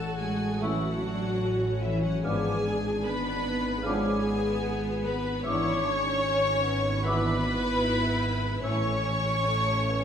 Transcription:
Already playing: A1 A2 E3 A3 C#4 E4 F#4 A4 E5 A5
0.01 C#5
0.21 G#3 G#4 E5 G#5
0.42 A5
0.60 E3 F#3 A3 C#4 E4 F#4 E5 F#5 C#6
0.82 A5
1.02 D4 E5
1.22 C#5
1.43 C#4 A4
1.64 E4
1.83 E3 E4 E5
2.04 F#3 C#4 F#4 F#5
2.24 G#1 G#2 F3 G#3 B3 D4 G#4 F5 G#5 D6
2.46 G#3
2.65 D4
2.85 F4
3.04 B3 B4 B5
3.27 D5
3.47 F5
3.66 B5
3.83 F3 G#3 B3 C#4 D4 G#4 F5 G#5 D6
4.06 B5
4.24 B3 F5
4.47 D5
4.67 B4
4.86 F4
5.06 G#3 B3 B4 B5
5.26 D4
5.44 G#1 G#2 E3 B3 C#4 D4 E4 C#5 E5 C#6 D6
5.66 G#3
5.85 D4
6.06 E4
6.25 C#4 B4
6.47 D5
6.64 B3 E5
6.86 B5
7.05 E3 B3 D4 E4 B4 E5 B5 D6
7.25 B5
7.45 E4 E5
7.64 D5
7.83 B4
8.04 E4
8.23 G#3
8.43 D4
8.62 A1 A2 E3 A3 C#4 E4 C#5 E5 C#6
8.83 E3
9.03 C#4
9.23 E4
9.44 A3 A4
9.88 B3 E5

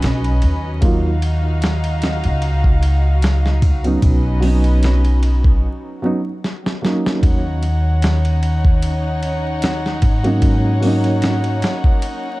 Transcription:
Already playing: F#3 B3 C#4 D#4 F#4 B4 D#5
0.02 B1, snare, ride
0.24 ride
0.42 D#2, ride
0.81 F#3 A#3 D#4 F4 F#4 F5, kick, ride
1.22 ride
1.62 snare, ride
1.84 ride
2.02 snare, ride
2.24 C#2, ride
2.42 ride
2.64 kick
2.83 ride
3.22 snare, ride
3.46 snare
3.62 kick, ride
3.84 F#3 B3 C#4 D#4, ride
4.01 B1 C#4 B4 D#5, kick, ride
4.40 F#3 B3, open hi-hat
4.45 C#4 D#4
4.64 ride
4.83 snare, ride
5.05 ride
5.23 ride
5.44 kick
6.02 F#3 B3 C#4 D#4
6.44 snare
6.66 snare
6.82 F#3 A#3 C#4 D#4, snare
7.06 snare
7.23 D#2 C#4 D#4 C#5 F#5, kick, ride
7.63 ride
8.02 snare, ride
8.25 ride
8.43 ride
8.65 kick
8.82 ride
9.23 ride
9.62 snare, ride
9.86 snare
10.02 G#2, kick, ride
10.23 F#3 A#3 C#4 D#4, ride
10.42 kick, ride
10.80 F#3 A#3, open hi-hat
10.85 C#4 D#4
11.04 ride
11.22 snare, ride
11.44 ride
11.62 snare, ride
11.84 kick
12.02 ride

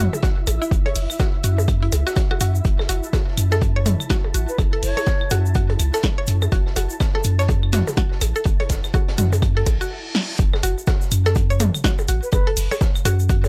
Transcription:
Already playing: E4 E5
0.13 percussion blips, shaker
0.22 F#4, kick, snare, closed hi-hat, shaker
0.47 A1, closed hi-hat, percussion blips, claves, shaker
0.62 E4, shaker
0.71 F#1, kick, closed hi-hat, shaker
0.86 C#5, closed hi-hat, percussion blips
0.95 F#1, closed hi-hat, open hi-hat, shaker
1.10 claves, shaker
1.19 F#4, kick, snare, closed hi-hat, percussion blips, shaker
1.43 F#2 F#4, closed hi-hat, shaker
1.58 percussion blips, shaker
1.68 kick, closed hi-hat, claves, shaker
1.82 E4, closed hi-hat
1.92 C#2, closed hi-hat, percussion blips, shaker
2.07 F#4, snare, shaker
2.16 F#4, kick, snare, closed hi-hat, shaker
2.31 F#4, percussion blips, claves
2.40 F#2 F#4, closed hi-hat, shaker
2.55 shaker
2.65 F#1 A5, kick, closed hi-hat, shaker
2.79 snare, percussion blips, claves
2.89 F#1 F#4, closed hi-hat, shaker
3.03 shaker
3.13 F#4, kick, snare, closed hi-hat, percussion blips, shaker
3.28 snare
3.37 F#2, closed hi-hat, claves, shaker
3.51 A4, snare, percussion blips, shaker
3.61 kick, closed hi-hat, shaker
3.76 C#5
3.86 closed hi-hat, mid tom, percussion blips, shaker
4.00 claves, shaker
4.09 F#4, kick, snare, closed hi-hat, shaker
4.24 percussion blips
4.34 A1 F#4, closed hi-hat, shaker
4.48 B4, shaker
4.58 F#1, kick, closed hi-hat, percussion blips, claves, shaker
4.73 A4, closed hi-hat
4.83 F#1 C#5, closed hi-hat, open hi-hat, shaker
4.97 C#5, percussion blips, shaker
5.06 kick, snare, closed hi-hat, shaker
5.21 claves
5.30 F#2 F#4, closed hi-hat, percussion blips, shaker
5.46 shaker
5.55 F#4, kick, closed hi-hat, shaker
5.70 closed hi-hat, percussion blips
5.79 C#2, closed hi-hat, claves, shaker
5.93 A4, snare, shaker
6.03 kick, snare, closed hi-hat, percussion blips, shaker
6.18 C#5
6.27 F#2, closed hi-hat, shaker
6.42 percussion blips, claves, shaker
6.52 F#1 F#4, kick, closed hi-hat, shaker
6.66 snare
6.76 F#1 F#4, closed hi-hat, percussion blips, shaker
6.90 shaker
7.00 kick, snare, closed hi-hat, claves, shaker
7.15 A4, snare, percussion blips
7.24 F#2, closed hi-hat, shaker
7.39 C#5, snare, shaker
7.48 kick, closed hi-hat, percussion blips, shaker
7.63 claves
7.72 F#4, snare, closed hi-hat, mid tom, shaker
7.87 snare, percussion blips, shaker
7.97 F#4, kick, snare, closed hi-hat, shaker
8.11 snare
8.21 A1, closed hi-hat, percussion blips, claves, shaker
8.36 A4, shaker
8.44 F#1, kick, closed hi-hat, shaker
8.60 C#5, closed hi-hat, percussion blips
8.69 F#1, kick, snare, closed hi-hat, shaker
8.84 snare, claves, shaker
8.94 F#4, kick, closed hi-hat, percussion blips, shaker
9.08 snare, closed hi-hat
9.18 F#2 F#4, snare, closed hi-hat, mid tom, shaker
9.33 closed hi-hat, percussion blips, shaker
9.42 kick, closed hi-hat, reverse cymbal, claves, shaker
9.57 A4, closed hi-hat
9.66 A1, kick, closed hi-hat, percussion blips, shaker
9.81 F#4, shaker
10.15 snare, zap
10.39 F#1, kick, closed hi-hat, shaker
10.53 snare, percussion blips, claves
10.63 F#1 F#4, closed hi-hat, shaker
10.78 shaker
10.87 F#4, kick, snare, closed hi-hat, percussion blips, shaker
11.02 snare, shaker
11.11 F#2, closed hi-hat, claves, shaker
11.26 A4, snare, percussion blips, shaker
11.35 kick, closed hi-hat, shaker
11.50 C#5, shaker
11.60 closed hi-hat, mid tom, percussion blips, shaker
11.74 claves, shaker
11.84 F#4, kick, snare, closed hi-hat, shaker
11.98 percussion blips, shaker
12.08 A1 F#4, closed hi-hat, shaker
12.23 B4, shaker
12.32 F#1 B4, kick, closed hi-hat, percussion blips, claves, shaker
12.47 A4, closed hi-hat
12.57 F#1, closed hi-hat, open hi-hat, shaker
12.71 C#5, percussion blips, shaker
12.81 kick, snare, closed hi-hat, shaker
12.95 claves, shaker
13.05 F#2 F#4, closed hi-hat, percussion blips, shaker
13.20 shaker
13.29 F#4, kick, closed hi-hat, shaker
13.44 C#5, closed hi-hat, percussion blips, shaker

